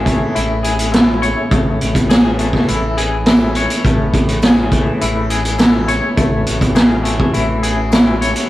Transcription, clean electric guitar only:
Already playing: E4 G#4 C#5
0.05 A3
0.35 E4
0.63 G#4
0.92 E4
1.22 C#5
1.51 A3
2.10 G#4
2.39 A3
2.69 E4
2.97 G#4
3.27 E4
3.56 C#5
3.86 A3
4.44 G#4
4.72 A3
5.02 E4
5.30 G#4
5.58 E4
5.88 C#5
6.17 A3
6.75 G#4
7.04 A3
7.34 E4
7.63 G#4
7.93 E4
8.21 C#5

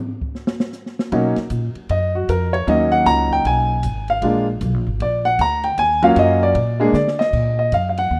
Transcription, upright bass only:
1.12 B2
1.37 muted upright bass stroke
1.50 A#2
1.75 muted upright bass stroke
1.90 F#2
2.29 F2
2.67 D#2
3.06 C#2
3.45 B1
3.83 G#1
4.22 A#1
4.61 B1
4.74 A#1
4.87 G#1
5.00 A#1
5.39 D2
5.78 D#2
6.16 F#2
6.55 A#2
6.93 D3
7.33 A#2
7.72 F#2
8.11 D#2

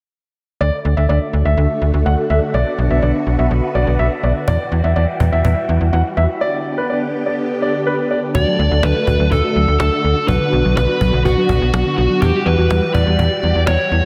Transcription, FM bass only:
0.61 D2
0.85 D2
0.97 D2
1.09 D2
1.33 D2
1.45 D2
1.57 D2
1.82 D2
1.94 D2
2.06 D2
2.30 D2
2.54 B1
2.78 B1
2.90 B1
3.02 B1
3.27 B1
3.39 B1
3.51 B1
3.75 B1
3.87 B1
3.99 B1
4.23 B1
4.48 E2
4.72 E2
4.84 E2
4.96 E2
5.20 E2
5.33 E2
5.45 E2
5.69 E2
5.81 E2
5.93 E2
6.17 E2
8.35 D2
8.59 D2
8.71 D2
8.83 D2
9.07 D2
9.19 D2
9.32 D2
9.56 D2
9.68 D2
9.80 D2
10.04 D2
10.28 B1
10.53 B1
10.65 B1
10.77 B1
11.01 B1
11.13 B1
11.25 B1
11.49 B1
11.62 B1
11.74 B1
11.98 B1
12.22 E2
12.46 E2
12.58 E2
12.70 E2
12.95 E2
13.07 E2
13.19 E2
13.43 E2
13.55 E2
13.67 E2
13.91 E2

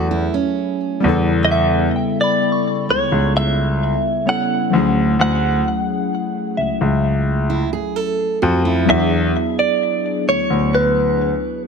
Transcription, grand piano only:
Already playing: E2
1.04 E2
2.89 C#2
3.12 C#2
4.73 D2
5.19 D2
6.58 C#2
6.81 C#2
8.43 F2
8.89 E2
10.27 D2
10.50 D2

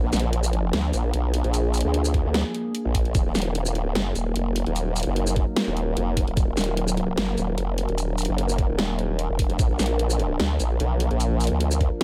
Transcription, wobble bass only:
0.03 A#1
0.13 A#1
0.73 D2
0.93 A#1
1.13 B1
1.44 A#1
1.84 D2
2.25 D2
2.85 A#1
3.15 D#1
3.26 D#1
3.35 D#1
3.77 D1
3.95 F#1
4.15 D#1
4.36 F1
4.66 D#1
5.07 F#1
5.67 D#1
5.97 F1
6.28 D#1
6.37 D#1
6.48 D#1
6.57 D#1
7.18 F#1
7.38 D#1
7.58 F1
7.89 D#1
8.29 F#1
8.69 D#1
9.30 F1
9.50 F1
9.59 A#1
9.70 A#1
9.79 A#1
10.40 D2
10.60 A#1
10.80 B1
11.11 A#1
11.51 D2

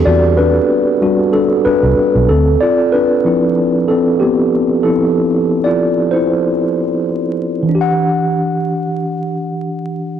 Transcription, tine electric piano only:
Already playing: B3 C4 D4 G4 G#4 A4
0.05 F#4 D5
0.37 D4 B4
1.02 G3 D4 F#4
1.33 D4 A4
1.65 D4 B4
2.29 C4 A4
2.61 F4 D5
2.92 D4 B4
3.25 F3 C4 E4
3.88 C4 A4
4.20 B3 G4
4.83 F3 C4 E4 A4
5.64 F4 D5
6.11 E4 C5
7.63 E3
7.69 D4
7.75 G4
7.81 F#5

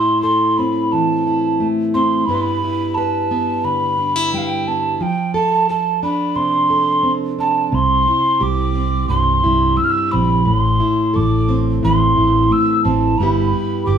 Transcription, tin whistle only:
Already playing: C6
0.22 C6
0.58 B5
0.92 A5
1.94 C6
2.26 B5
2.34 C6
2.41 B5
2.95 A5
3.64 B5
4.34 G5
4.38 F5
4.47 G5
4.67 A5
5.02 G5
5.35 A5
5.69 A5
6.03 B5
6.36 C6
7.40 A5
7.75 C6
8.43 D6
9.09 C6
9.77 E6
9.84 F6
9.90 E6
10.12 B5
10.45 B5
10.58 C6
11.16 D6
11.84 C6
12.52 E6
12.84 A5
13.18 B5
13.86 D6

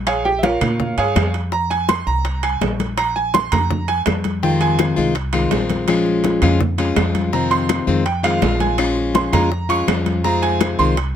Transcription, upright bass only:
Already playing: A#1
0.61 A#2
0.98 G2
1.16 F2
2.07 C2
2.61 A#1
3.52 F2
4.07 F2
4.97 C2
5.52 A#1
6.42 F2
6.97 F2
7.87 F2
8.42 A#1
9.33 F2
9.88 F2
10.79 C2

